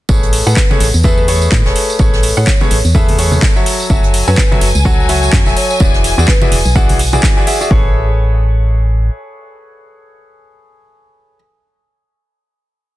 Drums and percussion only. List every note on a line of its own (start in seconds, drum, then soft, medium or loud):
0.09 kick loud
0.09 tambourine medium
0.23 closed hi-hat soft
0.23 tambourine soft
0.33 open hi-hat loud
0.33 tambourine medium
0.47 tambourine medium
0.56 kick loud
0.56 snare loud
0.56 clap loud
0.56 tambourine medium
0.71 tambourine soft
0.71 high conga loud
0.80 open hi-hat loud
0.80 tambourine medium
0.94 tambourine medium
1.03 kick loud
1.03 tambourine medium
1.03 tambourine loud
1.17 tambourine soft
1.28 open hi-hat loud
1.28 tambourine medium
1.42 tambourine medium
1.51 kick loud
1.51 snare loud
1.51 clap loud
1.51 tambourine medium
1.65 snare soft
1.65 tambourine soft
1.75 open hi-hat loud
1.75 tambourine medium
1.90 tambourine medium
1.99 kick loud
1.99 tambourine medium
2.13 snare soft
2.13 tambourine soft
2.23 open hi-hat loud
2.23 tambourine medium
2.37 tambourine medium
2.46 kick loud
2.46 snare loud
2.46 clap loud
2.46 tambourine medium
2.61 tambourine soft
2.61 high conga loud
2.71 open hi-hat loud
2.71 tambourine medium
2.85 tambourine medium
2.95 kick loud
2.95 tambourine medium
3.08 open hi-hat medium
3.08 tambourine soft
3.08 high conga medium
3.19 open hi-hat loud
3.19 tambourine medium
3.32 tambourine medium
3.32 high conga loud
3.42 kick loud
3.42 snare loud
3.42 clap loud
3.42 tambourine medium
3.56 tambourine soft
3.66 open hi-hat loud
3.66 tambourine medium
3.80 tambourine medium
3.90 kick loud
3.90 tambourine medium
4.04 closed hi-hat soft
4.04 tambourine soft
4.14 open hi-hat loud
4.14 tambourine medium
4.28 tambourine medium
4.37 kick loud
4.37 snare loud
4.37 clap loud
4.37 tambourine medium
4.52 tambourine soft
4.52 high conga medium
4.61 open hi-hat loud
4.61 tambourine medium
4.75 tambourine medium
4.85 kick loud
4.85 tambourine medium
5.00 tambourine soft
5.09 open hi-hat loud
5.09 tambourine medium
5.23 tambourine medium
5.33 kick loud
5.33 snare loud
5.33 clap loud
5.33 tambourine medium
5.46 snare soft
5.46 tambourine soft
5.57 open hi-hat loud
5.57 tambourine medium
5.70 tambourine medium
5.80 kick loud
5.80 tambourine medium
5.94 snare soft
5.94 tambourine soft
6.04 open hi-hat loud
6.04 tambourine medium
6.19 tambourine medium
6.28 kick loud
6.28 snare loud
6.28 clap loud
6.28 tambourine medium
6.42 tambourine soft
6.42 high conga medium
6.52 open hi-hat loud
6.52 tambourine medium
6.65 tambourine medium
6.76 kick loud
6.76 tambourine medium
6.76 tambourine loud
6.89 open hi-hat medium
6.89 tambourine soft
6.89 high conga medium
6.99 open hi-hat loud
6.99 tambourine medium
7.13 tambourine medium
7.13 high conga medium
7.23 kick loud
7.23 snare loud
7.23 clap loud
7.23 tambourine medium
7.37 tambourine soft
7.47 open hi-hat loud
7.47 tambourine medium
7.61 tambourine medium
7.71 kick loud